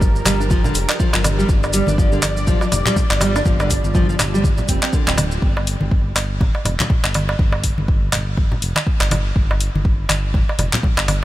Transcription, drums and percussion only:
0.01 kick, maracas
0.16 maracas
0.26 clap, open hi-hat, darbuka ka, high conga, low conga, maracas
0.41 maracas
0.50 kick, high conga, maracas
0.64 low conga, maracas
0.75 open hi-hat, maracas
0.89 clap, darbuka tek, maracas
1.00 kick, maracas
1.13 clap, darbuka tek
1.24 open hi-hat, darbuka ka, high conga, low conga, maracas
1.40 maracas
1.49 kick, maracas
1.63 darbuka ka, maracas
1.73 open hi-hat, maracas
1.87 high conga, maracas
1.98 kick, maracas
2.12 maracas
2.22 clap, open hi-hat, darbuka ka, high conga, maracas
2.37 maracas
2.47 kick, low conga, maracas
2.61 darbuka ka, maracas
2.72 open hi-hat, darbuka tek, high conga, low conga, maracas
2.86 clap, low conga, maracas
2.96 kick, low conga, maracas
3.10 clap, darbuka tek
3.21 open hi-hat, darbuka ka, high conga, maracas
3.36 darbuka tek, maracas
3.45 kick, low conga, maracas
3.60 darbuka ka, maracas
3.70 kick, open hi-hat, maracas
3.84 high conga, maracas
3.95 kick, maracas
4.09 maracas
4.19 clap, open hi-hat, darbuka ka, high conga, darbuka tek, low conga, maracas
4.35 maracas
4.44 kick, high conga, maracas
4.58 low conga, maracas
4.68 kick, open hi-hat, maracas
4.83 clap, darbuka tek, maracas
4.93 kick, maracas
5.07 clap, darbuka tek, maracas
5.18 open hi-hat, darbuka ka, high conga, low conga, maracas
5.32 maracas
5.42 kick
5.57 darbuka ka
5.67 open hi-hat
5.81 high conga
5.91 kick
6.16 clap, open hi-hat, darbuka ka
6.41 kick, low conga
6.55 darbuka ka
6.65 open hi-hat, darbuka tek, high conga, low conga
6.80 clap, high conga, low conga
6.90 kick, low conga
7.04 clap, darbuka tek
7.14 open hi-hat, darbuka ka, high conga
7.29 darbuka tek
7.39 kick, low conga
7.52 darbuka ka
7.64 kick, open hi-hat
7.78 high conga
7.88 kick
8.12 clap, open hi-hat, darbuka ka, low conga
8.37 kick, high conga
8.52 low conga
8.62 open hi-hat
8.76 clap, high conga, darbuka tek
8.87 kick
9.01 clap, darbuka tek
9.11 open hi-hat, darbuka ka, high conga, low conga
9.36 kick
9.51 darbuka ka
9.61 open hi-hat
9.75 high conga
9.85 kick
10.09 clap, open hi-hat, darbuka ka, high conga
10.34 kick, low conga
10.49 darbuka ka
10.59 open hi-hat, high conga, darbuka tek, low conga
10.73 clap, low conga
10.83 kick, low conga
10.98 clap, darbuka tek
11.08 open hi-hat, darbuka ka, high conga

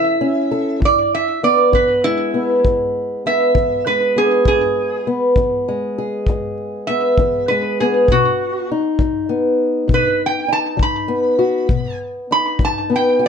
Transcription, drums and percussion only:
0.82 kick
1.73 kick
2.65 kick
3.55 kick
4.45 kick
5.36 kick
6.27 kick
7.18 kick
8.08 kick
8.99 kick
9.89 kick
10.79 kick
11.69 kick
12.59 kick

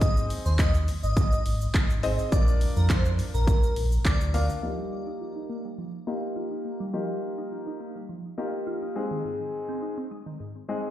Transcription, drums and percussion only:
0.01 kick, closed hi-hat, shaker
0.17 shaker
0.30 open hi-hat, shaker
0.46 shaker
0.59 kick, clap, closed hi-hat, shaker
0.74 shaker
0.88 open hi-hat, shaker
1.03 shaker
1.17 kick, closed hi-hat, shaker
1.32 shaker
1.46 open hi-hat, shaker
1.61 shaker
1.74 kick, clap, closed hi-hat, shaker
1.90 shaker
2.03 open hi-hat, shaker
2.19 shaker
2.32 kick, closed hi-hat, shaker
2.48 shaker
2.61 open hi-hat, shaker
2.76 shaker
2.90 kick, clap, closed hi-hat, shaker
3.05 shaker
3.19 open hi-hat, shaker
3.34 shaker
3.47 kick, closed hi-hat, shaker
3.63 shaker
3.76 open hi-hat, shaker
3.92 shaker
4.05 kick, clap, closed hi-hat, shaker
4.21 shaker
4.34 open hi-hat, shaker
4.49 shaker

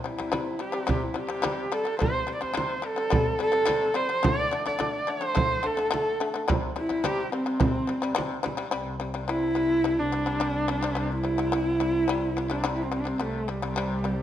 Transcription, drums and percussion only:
0.20 frame drum
0.32 frame drum
0.89 frame drum
1.03 frame drum
1.16 frame drum
1.45 frame drum
2.02 frame drum
2.43 frame drum
2.57 frame drum
3.13 frame drum
3.27 frame drum
3.40 frame drum
3.68 frame drum
4.25 frame drum
4.68 frame drum
4.81 frame drum
5.37 frame drum
5.52 frame drum
5.67 frame drum
5.94 frame drum
6.49 frame drum
6.90 frame drum
7.04 frame drum
7.60 frame drum
7.76 frame drum
7.90 frame drum
8.18 frame drum
8.46 frame drum

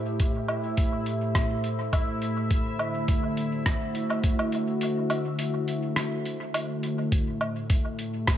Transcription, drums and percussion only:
0.20 kick, closed hi-hat
0.48 low woodblock
0.77 kick, closed hi-hat
1.06 closed hi-hat
1.35 kick, cross-stick, closed hi-hat
1.64 closed hi-hat
1.93 kick, closed hi-hat, low woodblock
2.22 closed hi-hat
2.51 kick, closed hi-hat
2.79 low woodblock
3.08 kick, closed hi-hat
3.37 closed hi-hat
3.66 kick, cross-stick, closed hi-hat
3.95 closed hi-hat
4.10 low woodblock
4.24 kick, closed hi-hat
4.39 low woodblock
4.52 closed hi-hat
4.81 closed hi-hat
5.10 closed hi-hat, low woodblock
5.39 closed hi-hat
5.68 closed hi-hat
5.96 cross-stick, closed hi-hat
6.25 closed hi-hat
6.54 closed hi-hat, low woodblock
6.83 closed hi-hat
7.12 kick, closed hi-hat
7.41 low woodblock
7.70 kick, closed hi-hat
7.99 closed hi-hat
8.27 kick, cross-stick, closed hi-hat

